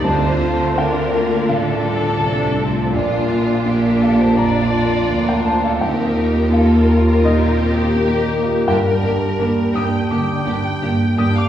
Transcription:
<<
  \new Staff \with { instrumentName = "Violin section" } { \time 4/4 \key d \phrygian \tempo 4 = 84 c''4 bes'4 a'2 | f'4. a'16 c''16 d''4~ d''16 bes'16 c''16 a'16 | bes'4 bes'4 g'2 | bes'4. g''8 g''4. g''16 f''16 | }
  \new Staff \with { instrumentName = "Grand piano" } { \time 4/4 \key d \phrygian << { a''4 g''4 f''2 | d''4. f''16 a''16 bes''4~ bes''16 g''16 a''16 f''16 | g''4 f''4 ees''2 | g''4. ees'''8 d'''4. ees'''16 d'''16 | } \\ { \tuplet 3/2 { d,8 f'8 a'8 c'8 c''8 f'8 a,8 f'8 a'8 c'8 a'8 f'8 } | \tuplet 3/2 { bes,,8 f'8 bes'8 bes8 bes'8 f'8 f,8 f'8 bes'8 bes8 bes'8 f'8 } | \tuplet 3/2 { ees,8 f'8 g'8 bes8 g'8 f'8 bes,8 f'8 g'8 bes8 g'8 f'8 } | \tuplet 3/2 { g,8 d'8 g'8 bes8 g'8 d'8 d8 d'8 g'8 bes8 g'8 d'8 } | } >> }
  \new Staff \with { instrumentName = "Violin section" } { \time 4/4 \key d \phrygian f'4 d'2. | f'4 g'4 f'2 | g'4 a'8 bes'4. bes'4 | g'8 g'8 g'8 g'8 g'8 g'8 g'8 g'8 | }
  \new Staff \with { instrumentName = "Viola section" } { \time 4/4 \key d \phrygian << { d'8 f'8 f'4 d'4 d'8 c'8 | d'4 d'2. | ees'4 f'2 g'4 | d'8 d'8 d'8 d'8 d'8 d'8 d'8 d'8 | } \\ { c'4 d'8 bes8 a8 g8 a4 | bes4 bes4 d'8 d'4. | c'8 bes4. ees'8 c'8 bes4 | bes8 bes8 bes8 bes8 bes8 bes8 bes8 bes8 | } >> }
  \new Staff \with { instrumentName = "Cello section" } { \clef bass \time 4/4 \key d \phrygian d2. c4 | bes,2. d,4 | ees,1 | g,8 g,8 g,8 g,8 g,8 g,8 g,8 g,8 | }
  \new Staff \with { instrumentName = "Double bass section" } { \clef bass \time 4/4 \key d \phrygian d,2. c,4 | bes,,2. d,4 | ees,1 | g,,8 g,,8 g,,8 g,,8 g,,8 g,,8 g,,8 g,,8 | }
>>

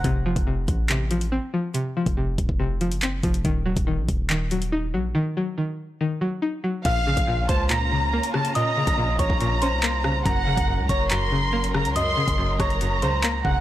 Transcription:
<<
  \new Staff \with { instrumentName = "Synth bell" } { \time 4/4 \key bes \minor \tempo 4 = 141 r1 | r1 | r1 | r1 |
<f'' f'''>4. <c'' c'''>8 <bes'' bes'''>2 | <ees'' ees'''>4. <des'' des'''>4 <c'' c'''>4. | <bes'' bes'''>4. <des'' des'''>8 <bes'' bes'''>2 | <ees'' ees'''>4. <des'' des'''>4 <c'' c'''>8 <bes'' bes'''>8 <ges'' ges'''>8 | }
  \new Staff \with { instrumentName = "Violin section" } { \time 4/4 \key bes \minor r1 | r1 | r1 | r1 |
f''4. a''8 bes''4. a''8 | bes''4. bes''2~ bes''8 | ges''4. bes''8 c'''4. bes''8 | c'''4. bes''2 ges''8 | }
  \new Staff \with { instrumentName = "String section" } { \time 4/4 \key bes \minor r1 | r1 | r1 | r1 |
<bes des' f'>1~ | <bes des' f'>1 | <ges des' bes'>1~ | <ges des' bes'>1 | }
  \new Staff \with { instrumentName = "Synth pluck" } { \clef bass \time 4/4 \key bes \minor c8 f8 c4 c8 f8 c'8 f8 | c8 f8 c4 c8 f8 c'8 f8 | ees8 ges8 ees4 ees8 ges8 ees'8 ges8 | ees8 ges8 ees4 ees8 ges8 ees'8 ges8 |
bes,8 des8 bes,4 bes,8 des8 bes8 des8 | bes,8 des8 bes,4 bes,8 des'8 bes8 des8 | ges,8 des8 ges,4 ges,8 des8 bes8 des8 | ges,8 des8 ges,4 ges,8 des8 bes8 des8 | }
  \new Staff \with { instrumentName = "808-style bass" } { \clef bass \time 4/4 \key bes \minor f,,8. f,,8. a,,4.~ a,,16 r8. | r8. f,,8. ees,,16 f,,4 ges,,8. f,,8 | ees,,8. ees,,8 bes,,16 ees,,2 bes,,8 | r1 |
bes,,8. bes,,8. des,4.~ des,16 r8. | r8. bes,,8. a,,16 bes,,4 c,4~ c,16 | ges,,8. ges,,8 des,16 ges,,2~ ges,,16 des,16~ | des,8 r16 ges,,8. ges,,4 des,4 f,,8 | }
  \new DrumStaff \with { instrumentName = "Drums" } \drummode { \time 4/4 <hh bd>8. <hh bd>16 r8 <hh bd>8 <hc hh>8 hh16 hh16 r4 | hh8. <hh bd>16 r8 <hh bd>16 bd16 r8 hh16 hh16 <hc hh>8 <hh bd>16 hh16 | <hh bd>8. <hh bd>16 r8 <hh bd>8 <hc hh>8 hh16 hh16 r4 | r4 r4 r4 r4 |
<cymc hh bd>8. <hh bd>16 r8 <hh bd>8 <hc hh>4 r16 hh16 ss16 hh16 | hh8. <hh bd>16 r8 <hh bd>16 bd16 hh8 hh8 <hc hh>8 ss8 | <hh bd>8. <hh bd>16 r8 <hh bd>8 <hc hh>4 r16 hh16 ss16 hh16 | hh8. <hh bd>16 r8 <hh bd ss>16 hh16 hh8 hh8 <hc hh>8 bd8 | }
>>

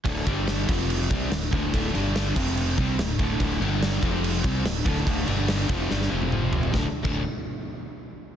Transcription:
<<
  \new Staff \with { instrumentName = "Distorted electric guitar" } { \clef bass \time 4/4 \key g \major \tempo 4 = 144 <d, a, d>8 <g, d g>4 <f, c f>4 <c g c'>8 <d, a,>8 <d, a, d>8 | <d, a, d>8 <g, d g>4 <f, c f>4 <c g c'>8 <d, a,>8 <d, a, d>8 | <d, a, d>8 <g, d g>4 <f, c f>4 <c g c'>8 <d, a,>8 <d, a, d>8 | <d, a, d>8 <g, d g>4 <f, c f>8 <g, d g>8 <f, c f>4. |
<d, a, d>16 r8 <d, a, d>8 r2 r8. | }
  \new Staff \with { instrumentName = "Overdriven electric guitar" } { \clef bass \time 4/4 \key g \major <d, a, d>8 <g, d g>4 <f, c f>4 <c g c'>8 <d, a,>8 <d, a, d>8 | <d, a, d>8 <g, d g>4 <f, c f>4 <c g c'>8 <d, a,>8 <d, a, d>8 | <d, a, d>8 <g, d g>4 <f, c f>4 <c g c'>8 <d, a,>8 <d, a, d>8 | <d, a, d>8 <g, d g>4 <f, c f>8 <g, d g>8 <f, c f>4. |
<d, a, d>16 r8 <d, a, d>8 r2 r8. | }
  \new Staff \with { instrumentName = "Fingered electric bass" } { \clef bass \time 4/4 \key g \major d,,8 g,,4 f,,4 c,8 d,,8 d,,8 | d,,8 g,,4 f,,4 c,8 d,,8 d,,8 | d,,8 g,,4 f,,4 c,8 d,,8 d,,8 | d,,8 g,,4 f,,8 g,,8 f,,4. |
d,,16 r8 d,,8 r2 r8. | }
  \new DrumStaff \with { instrumentName = "Drums" } \drummode { \time 4/4 <cymc bd>8 <cymc bd>8 <cymc sn>8 <cymc bd>8 cymc8 <cymc bd>8 <cymc sn>8 <cymc bd>8 | <cymc bd>8 cymc8 <cymc sn>8 <cymc bd>8 cymc8 <cymc bd>8 <cymc sn>8 <cymc bd>8 | <cymc bd>8 cymc8 <cymc sn>8 <cymc bd>8 cymc8 <cymc bd>8 <cymc sn>8 <cymc bd>16 sn16 | <cymc bd>8 cymc8 <cymc sn>8 <cymc bd>8 sn16 sn8 tommh16 toml8 tomfh16 tomfh16 |
<bd sn>8. <cymc bd>16 r4 r4 r4 | }
>>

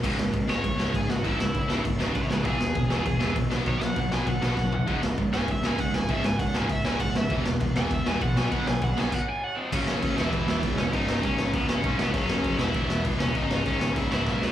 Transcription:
<<
  \new Staff \with { instrumentName = "Overdriven electric guitar" } { \time 4/4 \key cis \minor \tempo 4 = 198 r4. cis''4. gis'8 fis'8 | e'2 r4 <e' cis''>8 <gis' b'>8 | gis'2. r4 | cis''8 fis''8 fis''8 gis''8 fis''2~ |
fis''4 r8 gis''8 e''8 gis''8 fis''8 gis''8 | e''8 gis''8 fis''8 gis''8 e''8 gis''8 fis''8 e''8 | r4. gis''8 e''8 gis''8 fis''8 gis''8 | fis''8 gis''8 fis''8 gis''8 fis''8 gis''8 fis''8 <bis dis''>8 |
cis'4. e'4. r8 cis'8 | dis'4 cis'4 b8 cis'4 b8 | cis'4. e'4. r8 cis'8 | dis'4 cis'4 e'8 e'4 b8 | }
  \new Staff \with { instrumentName = "Distorted electric guitar" } { \clef bass \time 4/4 \key cis \minor <cis, gis, cis>8 <cis, gis,>8 <cis, gis,>8 <cis, gis, cis>8 <cis, gis,>8 <cis, gis, cis>8 <cis, gis,>8 <cis, gis,>8 | <cis, gis, cis>8 <cis, gis,>8 <cis, gis,>8 <cis, gis, cis>8 <cis, gis,>8 <cis, gis, cis>8 <cis, gis,>8 <cis, gis,>8 | <e, b, e>8 <e, b,>8 <e, b,>8 <e, b, e>8 <e, b,>8 <e, b, e>8 <e, b,>8 <b, fis b>8 | <b, fis b>8 <b, fis>8 <b, fis>8 <b, fis b>8 <b, fis>8 <b, fis b>8 <b, fis>8 <b, fis>8 |
<cis, gis, cis>8 <cis, gis,>8 <cis, gis,>8 <cis, gis, cis>8 <cis, gis,>8 <cis, gis, cis>8 <cis, gis,>8 <cis, gis,>8 | <cis, gis, cis>8 <cis, gis,>8 <cis, gis,>8 <cis, gis, cis>8 <cis, gis,>8 <cis, gis, cis>8 <cis, gis,>8 <cis, gis,>8 | <e, b, e>8 <e, b,>8 <e, b,>8 <e, b, e>8 <e, b,>8 <e, b, e>8 <e, b,>8 <b, fis b>8 | <b, fis b>8 <b, fis>8 <b, fis>8 <b, fis b>8 r2 |
<fis, cis fis>4. <e, b, e>2~ <e, b, e>8 | <cis, gis, cis>2~ <cis, gis, cis>8 <cis, gis, cis>8 <cis, gis, cis>4 | <fis, cis fis>4. <e, b, e>2~ <e, b, e>8 | <cis, gis, cis>2~ <cis, gis, cis>8 <cis, gis, cis>8 <cis, gis, cis>4 | }
  \new Staff \with { instrumentName = "Picked electric bass" } { \clef bass \time 4/4 \key cis \minor cis,,8 cis,,8 cis,,8 cis,,8 cis,,8 cis,,8 cis,,8 cis,,8 | cis,,8 cis,,8 cis,,8 cis,,8 cis,,8 cis,,8 cis,,8 cis,,8 | e,,8 e,,8 e,,8 e,,8 e,,8 e,,8 ais,,8 b,,8 | b,,8 b,,8 b,,8 b,,8 b,,8 b,,8 b,,8 b,,8 |
cis,,8 cis,,8 cis,,8 cis,,8 cis,,8 cis,,8 cis,,8 cis,,8 | cis,,8 cis,,8 cis,,8 cis,,8 cis,,8 cis,,8 cis,,8 fis,,8 | e,,8 e,,8 e,,8 e,,8 e,,8 e,,8 ais,,8 b,,8 | b,,8 b,,8 b,,8 b,,8 r2 |
fis,,8 fis,,8 fis,,8 e,,8 e,,8 e,,8 cis,8 e,,8 | cis,,8 cis,,8 cis,,8 gis,,8 cis,,8 cis,,8 b,,8 eis,,8 | fis,,8 fis,,8 fis,,8 e,,8 e,,8 e,,8 cis,8 e,,8 | cis,,8 cis,,8 cis,,8 gis,,8 cis,,8 cis,,8 b,,8 eis,,8 | }
  \new DrumStaff \with { instrumentName = "Drums" } \drummode { \time 4/4 <cymc bd>8 sn8 <cymc bd>8 sn8 <cymc bd>8 sn8 <cymc bd>8 sn8 | <cymc bd>8 sn8 <cymc bd>8 sn8 <cymc bd>8 sn8 <cymc bd>8 sn8 | <cymc bd>8 sn8 <cymc bd>8 sn8 <cymc bd>8 sn8 <cymc bd>8 sn8 | <cymc bd>8 sn8 <cymc bd>8 sn8 <cymc bd>8 sn8 <bd sn>8 tomfh8 |
<cymc bd>8 sn8 <cymc bd>8 sn8 <cymc bd>8 sn8 <cymc bd>8 sn8 | <cymc bd>8 sn8 <cymc bd>8 sn8 <cymc bd>8 sn8 <cymc bd>8 sn8 | <cymc bd>8 sn8 <cymc bd>8 sn8 <cymc bd>8 sn8 <cymc bd>8 sn8 | <cymc bd>8 sn8 <cymc bd>8 sn8 <cymc bd>4 r4 |
<cymc bd>8 sn8 <cymc bd>8 sn8 <cymc bd>8 sn8 <cymc bd>8 sn8 | <cymc bd>8 sn8 <cymc bd>8 sn8 <cymc bd>8 sn8 <cymc bd>8 sn8 | <cymc bd>8 sn8 <cymc bd>8 sn8 <cymc bd>8 sn8 <cymc bd>8 sn8 | <cymc bd>8 sn8 <cymc bd>8 sn8 <cymc bd>8 sn8 <bd sn>8 sn8 | }
>>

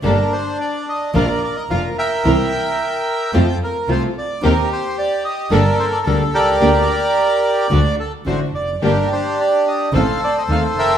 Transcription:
<<
  \new Staff \with { instrumentName = "Bandoneon" } { \time 4/4 \key g \minor \tempo 4 = 109 << { bes'8 c''8 d''8 ees''8 f''8 d''16 ees''16 f''8 g''8~ | g''2~ g''8 bes'8 c''8 d''8 | bes'8 c''8 d''8 ees''8 d''8 c''16 d''16 bes'8 d''8~ | d''2~ d''8 a'8 c''8 d''8 |
bes'8 c''8 d''8 ees''8 f''8 d''16 ees''16 f''8 g''8 | } \\ { d'2 <bes' d''>4. <bes' e''>8~ | <bes' e''>2 r2 | g'2 <a' bes'>4. <g' bes'>8~ | <g' bes'>2 r2 |
<d' g'>2 <a' c''>4. <bes' e''>8 | } >> }
  \new Staff \with { instrumentName = "String section" } { \time 4/4 \key g \minor <bes g' a'>8 r4. <d' f' bes'>8 r8 <d' f' bes'>8 r8 | <c' e' bes'>8 r4. <c' f' a'>8 r8 <c' f' a'>8 r8 | <c' ees' bes'>8 r4. <bes g' a'>8 r8 <bes g' a'>8 r8 | <bes d' g'>8 r4. <a d' fis'>8 r8 <a d' fis'>8 r8 |
<bes d' g'>8 r4. <c' ees' a'>8 r8 <c' ees' a'>8 r8 | }
  \new Staff \with { instrumentName = "Nylon-string guitar" } { \time 4/4 \key g \minor <d g bes d' a'>8 r4. <f bes d' f'>8 r8 <f bes d' f'>8 r8 | <c e bes c' e'>8 r4. <c f a c' f'>8 r8 <c f a c' f'>8 r8 | <ees bes c' g'>8 r4. <d g bes d' a'>8 r8 <d g bes d' a'>8 r8 | <d bes d' g'>8 r4. <d a d' fis'>8 r8 <d a d' fis'>8 r8 |
<d g bes d' g'>8 r4. <ees a c'>8 r8 <ees a c'>8 r8 | }
  \new Staff \with { instrumentName = "Double bass" } { \clef bass \time 4/4 \key g \minor g,,8 r4. bes,,8 r8 f,,8 r8 | c,8 r4. f,8 r8 c,8 r8 | ees,8 r4. g,,8 r8 d,8 c,8 | d,8 r4. d,8 r8 a,,8 f,,8 |
g,,8 r4. a,,8 r8 ees,8 f,,8 | }
>>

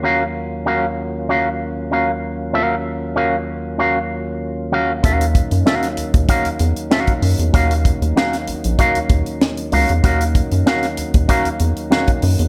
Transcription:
<<
  \new Staff \with { instrumentName = "Clean electric guitar" } { \time 4/4 \key ees \dorian \tempo 4 = 96 <des' ges' bes' f''>8 r8 <des' ges' bes' f''>8 r8 <des' ges' bes' f''>8 r8 <des' ges' bes' f''>8 r8 | <des' ges' bes' f''>8 r8 <des' ges' bes' f''>8 r8 <des' ges' bes' f''>8 r4 <des' ges' bes' f''>8 | <des' ges' bes' f''>8 r8 <des' ges' bes' f''>8 r8 <des' ges' bes' f''>8 r8 <des' ges' bes' f''>8 r8 | <des' ges' bes' f''>8 r8 <des' ges' bes' f''>8 r8 <des' ges' bes' f''>8 r4 <des' ges' bes' f''>8 |
<des' ges' bes' f''>8 r8 <des' ges' bes' f''>8 r8 <des' ges' bes' f''>8 r8 <des' ges' bes' f''>8 r8 | }
  \new Staff \with { instrumentName = "Tonewheel organ" } { \time 4/4 \key ees \dorian f'1~ | f'1 | ees'1~ | ees'1~ |
ees'1 | }
  \new Staff \with { instrumentName = "Tonewheel organ" } { \clef bass \time 4/4 \key ees \dorian <ees, ges bes des'>1~ | <ees, ges bes des'>1~ | <ees, ges bes des'>1~ | <ees, ges bes des'>1~ |
<ees, ges bes des'>1 | }
  \new Staff \with { instrumentName = "Analog synth bass" } { \clef bass \time 4/4 \key ees \dorian r1 | r1 | ees,8. ges,16 r8 ees,16 ees,16 r16 fes,16 fes,16 r8. ges,16 fes,16 | ees,8. ees,16 r8 bes,,16 bes,,16 r16 ees,16 ees,16 r8. des,16 fes,16 |
ees,8. ges,16 r8 ees,16 ees,16 r16 fes,16 fes,16 r8. ges,16 fes,16 | }
  \new DrumStaff \with { instrumentName = "Drums" } \drummode { \time 4/4 r4 r4 r4 r4 | r4 r4 r4 r4 | <hh bd>16 hh16 <hh bd>16 hh16 sn16 <hh sn>16 hh16 <hh bd>16 <hh bd>16 hh16 hh16 hh16 sn16 <hh bd>16 hho16 hh16 | <hh bd>16 hh16 <hh bd>16 hh16 sn16 <hh sn>16 hh16 hh16 <hh bd>16 hh16 <hh bd>16 hh16 sn16 hh16 hho16 hh16 |
<hh bd>16 hh16 <hh bd>16 hh16 sn16 <hh sn>16 hh16 <hh bd>16 <hh bd>16 hh16 hh16 hh16 sn16 <hh bd>16 hho16 hh16 | }
>>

